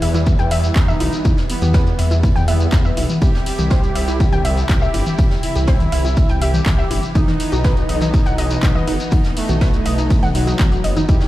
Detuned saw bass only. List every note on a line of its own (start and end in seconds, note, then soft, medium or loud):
0.02 0.33 E2 medium
0.39 0.70 E2 loud
0.76 0.93 E2 loud
1.00 1.09 B1 medium
1.25 1.34 E2 loud
1.62 1.93 E2 loud
1.99 2.30 E2 medium
2.36 2.67 E2 loud
2.73 2.90 E2 loud
2.97 3.06 B1 medium
3.22 3.31 C2 loud
3.59 3.90 C2 loud
3.95 4.27 C2 medium
4.32 4.64 C2 loud
4.69 4.87 C2 loud
4.94 5.03 G1 medium
5.19 5.27 C2 loud
5.56 5.87 C2 loud
5.92 6.24 C2 medium
6.29 6.60 C2 loud
6.66 6.84 C2 loud
6.91 7.00 G1 medium
7.15 7.24 B1 loud
7.52 7.83 B1 loud
7.89 8.20 B1 medium
8.26 8.57 B1 loud
8.63 8.80 B1 loud
8.88 8.96 F#1 medium
9.12 9.21 B1 loud
9.49 9.80 B1 loud
9.86 10.17 B1 medium
10.23 10.54 B1 medium
10.60 10.77 A1 medium
10.84 11.02 F#1 medium
11.09 11.18 E2 loud